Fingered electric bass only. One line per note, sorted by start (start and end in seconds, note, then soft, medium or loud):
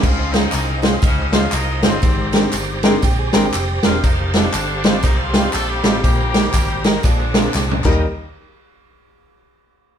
0.03 0.46 C#2 loud
0.53 0.95 C2 medium
1.03 1.46 C#2 medium
1.52 1.84 C2 medium
1.83 2.00 G1 medium
2.03 2.45 G#1 loud
2.53 2.96 G1 medium
3.03 3.29 A#1 medium
3.34 3.51 G#1 medium
3.54 3.79 F1 loud
3.84 4.01 E1 medium
4.04 4.46 F1 loud
4.53 5.04 G1 loud
5.04 5.46 C2 medium
5.54 5.80 A#1 loud
5.84 6.01 A1 medium
6.04 6.47 A#1 loud
6.54 6.96 G#1 medium
7.04 7.47 A#1 loud
7.55 7.80 C2 loud
7.85 8.03 D#2 loud